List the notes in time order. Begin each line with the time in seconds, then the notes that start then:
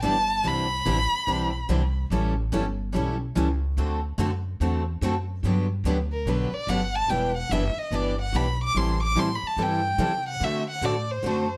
0.02 G1 E3 G3 B3 D4 E4 G4 B4 A5
0.43 C2 C3 D3 E3 G3 C4 D4 E4 G4 C5
0.48 B5
0.85 A1 C3 D3 E3 G3 C4 D4 E4 G4 C5
1.12 muted upright bass stroke
1.27 B1 C3 D3 E3 G3 C4 D4 E4 G4 C5
1.69 C2 C3 D3 E3 G3 C4 D4 E4 G4 C5
2.10 A1 E3 G3 C#4 E4 A4
2.52 G1 E3 G3 C#4 E4 A4
2.95 B1 E3 G3 C#4 E4 A4
3.36 C#2 E3 G3 C#4 E4 A4
3.77 D2 D3 A3 C4 F#4 A4
4.18 F#2 D3 A3 C4 F#4 A4
4.60 E2 D3 A3 C4 F#4 A4
5.01 F#2 D3 A3 C4 F#4 A4
5.43 G2 D3 F#3 B3 D4 G4
5.84 D2 D3 F#3 B3 D4 G4
6.12 A#4
6.25 B1 D3 F#3 B3 D4 G4 B4
6.52 D5, muted upright bass stroke
6.67 G1 D3 F#3 B3 D4 G4 F#5
6.96 A5
7.08 E1 E3 G3 B3 D4 E4 G4 B4 G5
7.37 F#5
7.49 F#1 E3 G3 B3 D4 E4 G4 B4 E5
7.76 D#5, muted upright bass stroke
7.91 G1 E3 G3 B3 D4 E4 G4 B4
7.95 D5
8.21 F#5
8.33 B1 E3 G3 B3 D4 E4 G4 B4 B5
8.64 D6
8.75 A1 E3 G3 C4 E4 A4 C6
9.03 D6
9.15 A2 E3 G3 C4 E4 A4
9.20 C6
9.36 B5
9.43 muted upright bass stroke
9.47 A5
9.57 G2 E3 G3 C4 E4 A4
9.62 G5
9.98 C3 E3 G3 C4 E4 A4
10.29 F#5
10.40 D3 A3 C4 F#4 A4 E5
10.71 F#5
10.81 A2 D3 A3 C4 F#4 A4
10.85 D5
11.11 C5
11.23 F#2 D3 A3 C4 F#4 A4